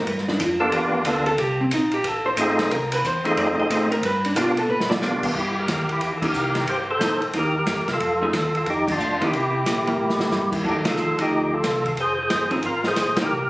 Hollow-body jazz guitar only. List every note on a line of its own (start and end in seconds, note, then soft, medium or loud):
0.08 0.28 B4 loud
0.28 0.41 D4 medium
0.41 0.61 F4 medium
0.60 0.73 A4 loud
0.73 1.26 B4 loud
1.27 1.38 A4 loud
1.39 1.59 G4 medium
1.61 1.72 C4 medium
1.74 1.93 D#4 medium
1.94 2.07 G4 loud
2.07 2.26 A4 loud
2.26 2.33 C5 loud
2.72 2.92 A#4 medium
2.93 3.04 B4 loud
3.06 3.25 C5 loud
3.25 3.37 D#5 loud
3.39 3.58 D5 medium
3.59 3.72 D#5 loud
3.72 3.91 C5 medium
3.92 4.03 A#4 loud
4.05 4.25 B4 loud
4.26 4.38 D4 medium
4.38 4.58 F4 medium
4.58 4.69 A4 loud
4.70 4.89 B4 loud
4.90 4.97 D5 loud
6.22 6.65 E3 medium
6.22 6.65 A#3 medium
6.22 6.66 D#4 medium
7.00 7.20 E3 medium
7.00 7.20 A#3 medium
7.00 7.21 D#4 medium
7.34 7.53 E3 medium
7.34 7.53 A#3 medium
7.34 7.53 D#4 medium
8.21 8.32 F3 medium
8.21 8.33 A3 medium
8.21 8.33 D#4 medium
8.21 8.33 G#4 medium
9.21 9.32 E3 medium
9.21 9.32 A#3 medium
9.21 9.32 D#4 medium
9.87 10.18 E3 medium
9.87 10.18 A#3 medium
10.20 10.62 E3 medium
10.20 10.63 A#3 medium
10.64 10.83 F#3 medium
10.64 10.84 A#3 medium
10.64 10.84 E4 medium
10.64 10.84 A4 medium
10.84 11.14 F3 medium
10.84 11.14 A3 medium
10.84 11.14 D#4 medium
10.84 11.14 G#4 medium
11.18 11.61 F3 medium
11.18 11.61 A3 medium
11.18 11.61 D#4 medium
12.51 12.62 F3 medium
12.51 12.62 C4 medium
12.51 12.62 D#4 medium
12.51 12.62 G#4 medium
13.17 13.28 E3 medium
13.17 13.28 A#3 medium
13.17 13.28 D#4 medium